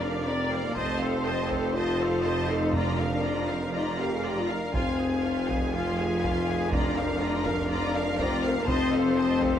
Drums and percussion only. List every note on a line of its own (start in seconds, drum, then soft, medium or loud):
0.77 taiko medium
1.51 taiko soft
4.75 taiko medium
5.50 taiko medium
6.24 taiko medium
6.73 taiko medium
7.46 taiko medium
8.19 taiko medium
8.68 taiko medium
9.42 taiko medium